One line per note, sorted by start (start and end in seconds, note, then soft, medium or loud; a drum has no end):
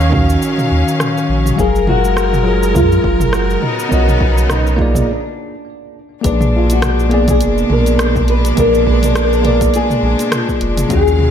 0.00 0.37 D#2 loud
0.00 0.10 D#3 medium
0.00 1.54 D#3 medium
0.00 1.54 F#3 medium
0.00 0.12 C#4 medium
0.00 1.54 C#4 medium
0.00 0.10 F#4 medium
0.00 0.11 F5 medium
0.00 1.54 F5 medium
0.00 cabasa soft
0.10 1.54 D#3 medium
0.10 1.55 C#4 medium
0.10 1.56 F#4 medium
0.10 kick loud
0.10 mid tom medium
0.15 1.56 F5 medium
0.29 cabasa medium
0.42 cabasa medium
0.58 mid tom medium
0.58 cabasa soft
0.71 0.84 D#2 medium
0.88 cabasa medium
1.00 cross-stick medium
1.00 mid tom medium
1.00 cabasa medium
1.17 cabasa soft
1.29 1.52 A#1 medium
1.46 mid tom medium
1.46 cabasa medium
1.56 2.77 F#1 loud
1.56 2.41 F#3 medium
1.56 3.60 G#3 medium
1.56 2.43 G#4 medium
1.56 1.88 G#4 loud
1.56 5.04 A#4 medium
1.56 2.42 F5 medium
1.56 kick loud
1.56 cabasa medium
1.61 2.44 A#4 medium
1.76 cabasa soft
1.87 2.76 F#4 medium
1.87 mid tom medium
2.05 cabasa medium
2.17 cross-stick medium
2.17 cabasa soft
2.33 mid tom medium
2.33 cabasa soft
2.43 3.59 F#3 medium
2.43 3.60 F4 medium
2.43 3.61 G#4 medium
2.48 3.62 A#4 medium
2.63 cabasa medium
2.75 2.98 F#2 medium
2.75 3.30 F4 loud
2.75 kick loud
2.75 mid tom medium
2.75 cabasa medium
2.92 cabasa soft
3.04 3.58 F#1 loud
3.04 kick medium
3.20 mid tom medium
3.20 cabasa medium
3.33 3.88 F#4 loud
3.33 cross-stick medium
3.33 cabasa medium
3.50 cabasa soft
3.62 5.06 C#3 medium
3.62 5.06 B3 medium
3.62 5.06 D#4 medium
3.62 mid tom medium
3.79 cabasa medium
3.89 5.03 B1 loud
3.89 4.75 B3 medium
3.89 4.75 A#4 medium
3.89 4.76 C#5 medium
3.89 kick loud
3.89 cabasa soft
3.93 4.52 F#4 medium
3.93 4.77 D#5 medium
4.08 mid tom medium
4.08 cabasa soft
4.21 kick loud
4.38 cabasa medium
4.50 5.10 D#4 medium
4.50 cross-stick medium
4.50 mid tom medium
4.50 cabasa medium
4.67 cabasa soft
4.76 5.07 A#3 medium
4.76 5.08 F4 medium
4.76 5.08 G#4 medium
4.76 kick loud
4.82 5.09 D5 medium
4.95 kick medium
4.95 mid tom medium
4.95 cabasa medium
5.10 5.93 D4 medium
6.22 7.42 A#1 loud
6.22 10.87 B2 medium
6.22 11.31 G#3 medium
6.22 7.07 A#3 medium
6.22 10.87 D4 medium
6.22 7.08 G#4 medium
6.22 7.09 B4 medium
6.22 kick loud
6.22 closed hi-hat medium
6.22 cabasa medium
6.26 6.55 D4 medium
6.26 7.10 D5 medium
6.41 mid tom medium
6.41 cabasa soft
6.56 6.72 F4 medium
6.70 7.13 F#4 medium
6.70 closed hi-hat soft
6.70 cabasa medium
6.82 cross-stick loud
6.82 closed hi-hat medium
6.82 mid tom medium
6.82 cabasa medium
6.99 cabasa soft
7.09 8.53 A#3 medium
7.09 8.55 B3 medium
7.09 8.54 G#4 medium
7.09 closed hi-hat soft
7.13 7.28 G#4 medium
7.13 8.55 D5 loud
7.28 7.72 G#4 medium
7.28 kick loud
7.28 closed hi-hat soft
7.28 mid tom medium
7.28 cabasa medium
7.41 7.64 F1 medium
7.41 closed hi-hat medium
7.41 cabasa medium
7.58 cabasa soft
7.70 8.52 A#1 loud
7.70 8.29 A#4 loud
7.70 mid tom medium
7.86 closed hi-hat soft
7.86 cabasa medium
7.99 cross-stick loud
7.99 closed hi-hat soft
7.99 cabasa medium
8.15 kick loud
8.15 mid tom medium
8.15 cabasa soft
8.28 8.59 B4 medium
8.28 closed hi-hat medium
8.45 closed hi-hat medium
8.45 cabasa medium
8.55 9.69 A#1 loud
8.55 9.40 A#3 medium
8.55 9.41 G#4 medium
8.55 9.42 B4 medium
8.55 kick loud
8.55 closed hi-hat medium
8.55 mid tom medium
8.55 cabasa medium
8.59 8.88 A#4 loud
8.59 9.43 D5 medium
8.74 cabasa soft
8.87 8.93 B4 medium
8.87 kick medium
9.03 9.15 A#4 medium
9.03 closed hi-hat soft
9.03 mid tom medium
9.03 cabasa medium
9.16 9.45 A#4 medium
9.16 cross-stick loud
9.16 closed hi-hat medium
9.16 cabasa medium
9.33 cabasa soft
9.42 10.86 A#3 medium
9.42 10.87 G#4 medium
9.42 10.87 B4 medium
9.42 closed hi-hat soft
9.42 mid tom medium
9.46 9.75 A#4 medium
9.46 10.88 D5 loud
9.61 kick loud
9.61 closed hi-hat soft
9.61 cabasa medium
9.74 10.02 G#4 loud
9.74 closed hi-hat medium
9.74 cabasa medium
9.90 mid tom medium
9.90 cabasa soft
10.03 10.15 A#1 medium
10.03 10.22 G#4 loud
10.19 10.34 F#4 medium
10.19 closed hi-hat soft
10.19 cabasa medium
10.32 10.92 F4 loud
10.32 cross-stick loud
10.32 closed hi-hat soft
10.32 mid tom medium
10.32 cabasa medium
10.49 kick medium
10.49 cabasa soft
10.61 10.84 F1 medium
10.61 closed hi-hat soft
10.77 closed hi-hat medium
10.77 mid tom medium
10.77 cabasa medium
10.87 11.31 D#2 medium
10.87 11.31 C#3 medium
10.87 11.31 D#3 medium
10.87 11.31 F#3 medium
10.87 11.31 C#4 medium
10.87 11.31 F4 medium
10.87 11.31 F#4 medium
10.87 11.31 F5 medium
10.87 kick loud
10.87 closed hi-hat medium
10.87 cabasa medium
10.92 11.31 G#4 loud
10.92 11.31 G#4 medium
11.07 cabasa soft
11.19 mid tom medium